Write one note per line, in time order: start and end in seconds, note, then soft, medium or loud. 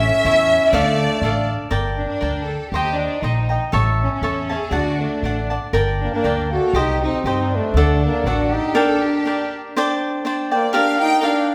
0.00 0.76 C#4 medium
0.00 0.24 E4 medium
0.00 0.25 A4 medium
0.00 0.24 C#5 medium
0.00 0.25 E5 medium
0.00 0.73 E5 loud
0.25 0.56 E2 medium
0.25 0.72 E4 soft
0.25 0.72 A4 soft
0.25 0.74 C#5 medium
0.25 0.74 E5 medium
0.72 1.05 D2 medium
0.72 1.49 A3 medium
0.72 1.22 D4 medium
0.72 1.22 A4 medium
0.72 1.48 D5 loud
0.72 1.23 D5 medium
0.72 1.23 F5 medium
1.22 1.54 A1 medium
1.22 1.70 D4 soft
1.22 1.70 A4 soft
1.22 1.70 D5 soft
1.22 1.72 F5 soft
1.70 2.04 G1 medium
1.70 2.19 A#4 medium
1.70 2.20 D5 medium
1.70 2.21 G5 medium
1.70 2.21 A5 medium
1.97 2.06 D4 medium
2.08 2.45 D4 medium
2.20 2.55 D2 medium
2.20 2.72 A#4 soft
2.20 2.72 D5 soft
2.20 2.73 G5 soft
2.20 2.73 A5 soft
2.45 2.71 A4 medium
2.69 3.05 D#2 medium
2.69 2.95 G4 medium
2.74 3.22 C5 medium
2.74 3.23 D#5 soft
2.74 3.22 G5 medium
2.74 3.23 A#5 medium
2.95 3.21 D4 medium
3.18 3.55 A#1 medium
3.18 3.59 D#4 medium
3.23 3.49 C5 soft
3.23 3.50 D#5 soft
3.23 3.49 G5 soft
3.23 3.48 A#5 soft
3.49 3.73 D#5 soft
3.49 3.73 G5 soft
3.49 3.73 A#5 soft
3.72 4.06 A1 medium
3.72 4.22 A4 medium
3.72 4.22 C#5 medium
3.72 4.23 E5 medium
3.72 4.24 A5 medium
4.03 4.13 C#4 medium
4.14 4.48 C#4 medium
4.22 4.55 E2 medium
4.22 4.49 A4 soft
4.22 4.49 C#5 soft
4.22 4.50 E5 soft
4.22 4.48 A5 soft
4.49 4.74 G#4 medium
4.49 4.72 C#5 soft
4.49 4.72 E5 soft
4.49 4.71 A5 soft
4.71 5.04 D2 medium
4.71 5.23 D4 soft
4.71 5.01 D4 soft
4.71 4.99 F#4 medium
4.71 5.23 D5 soft
4.71 5.23 F#5 medium
4.71 5.23 A5 medium
5.00 5.50 A3 soft
5.00 5.50 D4 medium
5.22 5.56 A1 medium
5.22 5.50 D4 soft
5.22 5.50 D5 soft
5.22 5.49 F#5 soft
5.22 5.49 A5 soft
5.50 5.73 D5 soft
5.50 5.74 F#5 soft
5.50 5.74 A5 soft
5.73 6.07 G1 medium
5.73 6.23 A#4 medium
5.73 6.24 D5 medium
5.73 6.24 G5 medium
5.73 6.24 A5 medium
6.01 6.14 A#3 soft
6.01 6.12 D4 medium
6.13 6.50 A#3 medium
6.13 6.49 D4 medium
6.24 6.58 D2 medium
6.24 6.74 A#4 soft
6.24 6.75 D5 soft
6.24 6.75 G5 soft
6.24 6.76 A5 soft
6.52 6.80 F#4 medium
6.52 6.74 A4 medium
6.73 7.07 C2 medium
6.73 7.24 G4 medium
6.73 7.02 G4 medium
6.73 7.26 C5 medium
6.73 7.25 D#5 medium
6.73 7.26 G5 medium
6.79 7.03 D#4 medium
7.03 7.26 C4 medium
7.03 7.25 D#4 medium
7.24 7.57 G2 medium
7.24 7.57 C4 medium
7.24 7.50 D#4 medium
7.24 7.76 G4 soft
7.24 7.76 C5 soft
7.24 7.76 D#5 soft
7.24 7.76 G5 soft
7.49 7.97 D4 medium
7.55 8.03 A3 medium
7.74 8.07 D2 medium
7.74 8.26 D4 medium
7.74 8.26 A4 medium
7.74 8.26 D5 medium
7.74 8.26 F#5 medium
7.98 8.22 D4 medium
8.05 8.30 A#3 medium
8.24 8.57 A1 medium
8.24 8.75 D4 soft
8.24 8.52 F#4 medium
8.24 8.74 A4 soft
8.24 8.74 D5 soft
8.24 8.76 F#5 soft
8.28 8.55 D4 medium
8.51 8.78 D#4 medium
8.51 8.75 G4 medium
8.74 9.25 D4 medium
8.74 9.02 D4 medium
8.74 9.01 A4 medium
8.74 9.25 A#4 medium
8.74 9.27 D5 medium
8.74 9.27 G5 medium
9.01 9.53 D4 medium
9.01 9.53 G4 medium
9.25 9.75 D4 soft
9.25 9.76 A#4 soft
9.25 9.77 D5 soft
9.25 9.76 G5 soft
9.76 10.24 D4 medium
9.76 10.24 C5 medium
9.76 10.26 D5 medium
9.76 10.25 G5 medium
10.25 10.51 D4 medium
10.25 10.52 C5 medium
10.25 10.50 D5 medium
10.25 10.51 G5 medium
10.51 10.75 A#3 medium
10.51 10.72 C5 soft
10.51 10.73 D5 soft
10.51 10.76 D5 medium
10.51 10.74 G5 soft
10.73 10.99 D4 medium
10.73 11.21 G4 medium
10.73 11.20 A#4 medium
10.73 11.22 D5 medium
10.73 11.22 F5 medium
10.73 10.99 F5 medium
10.99 11.26 D#4 medium
10.99 11.22 G5 loud
11.21 11.55 D4 medium
11.21 11.55 G4 medium
11.21 11.55 A#4 medium
11.21 11.55 D5 medium
11.21 11.55 F5 medium